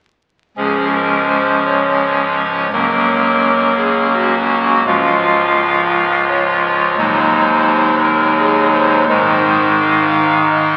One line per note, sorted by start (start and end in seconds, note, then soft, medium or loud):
0.57 2.68 C#1 medium
0.57 2.68 C#2 medium
0.57 2.68 F3 soft
0.57 2.68 G#3 soft
0.57 2.68 C#4 soft
0.57 0.88 G#4 medium
0.94 1.24 A#4 medium
1.28 1.59 C5 medium
1.65 2.69 C#5 medium
2.72 4.83 C#1 medium
2.72 4.83 C#2 soft
2.72 4.83 F#3 soft
2.72 4.83 A#3 soft
2.72 4.83 C#4 soft
2.72 3.75 A#4 medium
3.77 4.08 G#4 medium
4.13 4.84 F#4 medium
4.86 6.94 C#1 medium
4.86 6.95 C#2 medium
4.86 6.95 F3 soft
4.86 6.95 G#3 soft
4.86 6.95 F4 soft
4.86 6.24 F5 loud
6.28 6.97 C#5 medium
6.98 9.04 D#1 medium
6.98 9.04 D#2 medium
6.98 9.04 F#3 soft
6.98 9.04 G#3 medium
6.98 9.04 D#4 soft
6.98 8.00 C5 loud
8.03 8.33 A#4 medium
8.38 8.68 G#4 medium
8.73 9.03 C5 loud
9.08 10.77 G#1 medium
9.08 10.77 G#2 medium
9.08 10.77 D#3 medium
9.08 10.77 G#3 medium
9.08 10.77 D#4 medium
9.08 9.79 C5 loud
9.80 10.49 F5 loud
10.50 10.77 D#5 medium